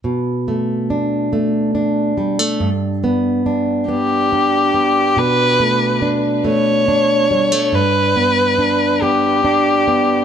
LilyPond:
<<
  \new Staff \with { instrumentName = "Violin" } { \time 6/8 \key b \minor \tempo 4. = 47 r2. | r4. g'4. | b'4 r8 cis''4. | b'4. g'4. | }
  \new Staff \with { instrumentName = "Steel-string acoustic guitar" } { \time 6/8 \key b \minor b,8 a8 d'8 a8 d'8 g16 a16 | g,8 b8 d'8 b8 d'8 b8 | b,8 a8 d'8 a8 d'8 g16 a16 | g,8 b8 d'8 b8 d'8 b8 | }
>>